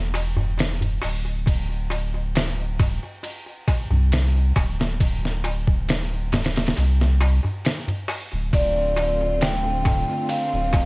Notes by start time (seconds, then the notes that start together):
Already playing: E1
0.14 ride, darbuka tek
0.36 darbuka tek, darbuka dum
0.58 snare, ride, darbuka tek
0.81 ride, darbuka tek, darbuka dum
1.02 D1, open hi-hat, darbuka tek
1.25 darbuka tek
1.46 kick, ride, darbuka tek
1.69 darbuka tek
1.90 ride, darbuka tek
2.14 darbuka tek
2.35 snare, ride, darbuka tek
2.59 darbuka tek
2.79 kick, ride, darbuka tek, darbuka dum
3.03 darbuka tek
3.23 ride, darbuka tek
3.46 darbuka tek
3.68 kick, ride, darbuka tek
3.91 C2, darbuka tek, darbuka dum
4.12 snare, ride, darbuka tek
4.35 darbuka tek
4.56 D1, kick, ride, darbuka tek
4.80 snare, darbuka tek
5.00 kick, ride, darbuka tek
5.23 snare, darbuka tek
5.44 ride, darbuka tek
5.67 kick, darbuka tek
5.89 snare, ride, darbuka tek
6.13 darbuka tek
6.32 snare, ride, darbuka tek, darbuka dum
6.44 snare, ride
6.56 snare, ride, darbuka tek
6.67 snare, ride
6.77 C2, ride, darbuka tek
7.00 snare, darbuka tek
7.21 ride, darbuka tek
7.43 darbuka tek, darbuka dum
7.65 snare, ride, darbuka tek
7.88 ride, darbuka tek, darbuka dum
8.08 open hi-hat, darbuka tek
8.32 D1, darbuka tek
8.53 D1 D3 A3 C4 F4 D5, kick, ride, darbuka tek
8.75 darbuka tek
8.96 ride, darbuka tek
9.21 darbuka tek
9.41 G5, snare, ride, darbuka tek
9.64 darbuka tek
9.85 kick, ride, darbuka tek, darbuka dum
10.08 darbuka tek
10.29 F5, ride, darbuka tek
10.52 D1, darbuka tek
10.73 kick, ride, darbuka tek